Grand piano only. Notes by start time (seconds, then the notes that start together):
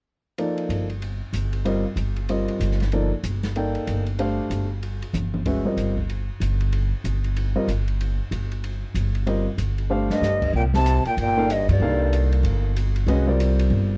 0.38 F3 A#3 D#4 A4 D5
1.65 G3 C4 F4 A#4 D#5
2.29 G3 C4 F4 A#4 D#5
2.93 F3 A#3 D#4 A4 D5
3.56 A#3 D#4 A4 D5 G5
4.19 A3 D4 G4 C5 F5
5.46 G#3 C#4 F#4 B4 E5
5.65 G3 C4 F4 A#4 D#5
7.55 G3 C4 F4 A#4 D#5
9.26 G3 C4 F4 A#4 D#5
9.90 A3 D4 G4 C5 F5
11.37 A#3 D#4 A4 D5 F5
11.81 A#3 D#4 A4 D5 F5
13.08 G#3 C#4 F#4 B4 D#5
13.27 G3 C4 F4 A#4 D5